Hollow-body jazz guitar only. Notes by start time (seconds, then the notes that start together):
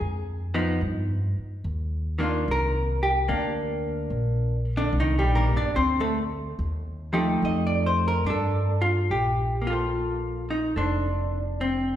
0.54 F3 B3 D#4
2.19 D#3 A#3 D4
2.23 F4
2.51 A#4
3.03 G4
3.28 A#3 D4
4.77 D3 D4
5.00 D#3 D#4
5.19 G3 G4
5.35 A#3 A#4
5.56 D4 D5
5.76 C4 C5
6.00 A3 A4
7.13 F3 A3 D#4 G4
7.45 D#5
7.67 D5
7.86 C5
8.08 A#4
8.26 D4 A4
8.82 F4
9.11 G4
9.62 A#3
9.67 F4 A4
9.73 C5
10.50 D#4
10.76 D4 A4 C5
11.61 C4